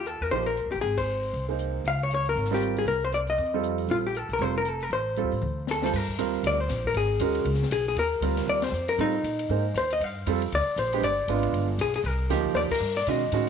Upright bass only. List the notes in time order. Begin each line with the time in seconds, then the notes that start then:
Already playing: D#2
0.21 E2
0.31 A#1
0.66 D2
0.74 A1
0.83 G#1
1.33 C2
1.84 C#2
2.35 G#1
2.86 C2
3.38 F2
3.88 A#1
4.29 B1
4.39 F1
4.90 A1
5.23 D#2
5.32 A2
5.41 D2
5.93 G2
6.18 D#2
6.43 D2
6.69 A#1
6.94 G#1
7.20 D#2
7.44 C#2
7.71 B1
7.95 D#2
8.20 D2
8.46 D#2
8.72 F2
8.98 A2
9.23 A#2
9.49 G#2
9.74 D#2
10.00 G2
10.26 F2
10.52 D2
10.66 muted upright bass stroke
10.76 A#1
11.02 G1
11.28 G#1
11.53 G1
11.78 B1
12.04 C2
12.29 D2
12.54 D#2
12.71 muted upright bass stroke
12.80 G2
13.07 B2
13.32 A2